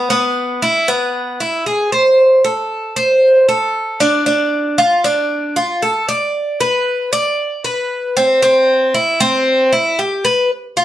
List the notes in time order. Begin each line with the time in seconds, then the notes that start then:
0.10 B3
0.62 E4
0.88 B3
1.40 E4
1.66 G#4
1.92 C5
2.44 A4
2.96 C5
3.49 A4
4.00 D4
4.26 D4
4.78 F4
5.04 D4
5.56 F4
5.82 A4
6.09 D5
6.61 B4
7.13 D5
7.64 B4
8.17 C4
8.42 C4
8.94 E4
9.20 C4
9.73 E4
9.99 G4
10.25 B4
10.77 F4